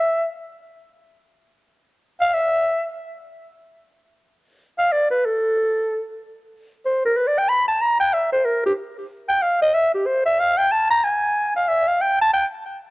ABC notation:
X:1
M:4/4
L:1/8
Q:"Swing" 1/4=186
K:Ephr
V:1 name="Clarinet"
e z6 z | z4 z f e2- | e z6 z | z4 z f d B |
A6 z2 | z2 c _B (3=B d g b a | _b g e c _B G z2 | z g f _e =e G c e |
f g a _b _a3 f | e f g a g z3 |]